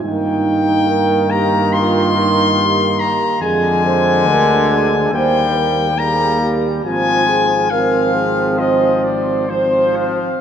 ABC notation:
X:1
M:4/4
L:1/8
Q:1/4=70
K:Eb
V:1 name="Cornet"
g3 b c'3 b | a4 g2 b z | a2 f2 e d c f |]
V:2 name="French horn section"
E2 B G F E G2 | A c B A c B A G | F A B A c4 |]
V:3 name="Euphonium"
B,8 | A,4 B,2 B,2 | C2 C4 C2 |]
V:4 name="Trombone" clef=bass
E,8 | D,4 G,2 G,2 | F,2 F,4 F,2 |]
V:5 name="Tuba" clef=bass
G,,8 | F,,2 D,,2 E,,4 | A,,,8 |]